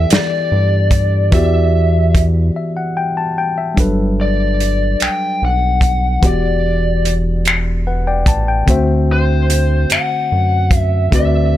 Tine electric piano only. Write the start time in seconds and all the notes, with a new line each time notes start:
Already playing: E3 B3 E4 G4 A4 D5
1.31 E3 B3 F#4
1.35 G4 D5
2.56 E5
2.77 F#5
2.97 G5
3.17 A5
3.38 G5
3.58 E5
3.74 F#3 G3 D4
3.79 A4 B4
6.20 E3 B3 F#4 G4
6.26 D5
7.87 B4 F#5
8.07 D5 G5
8.28 A5
8.48 G5
8.66 D3 A3 C4 F#4
8.70 C5 E5
11.10 D3 A3 C4 F#4
11.15 B4 D5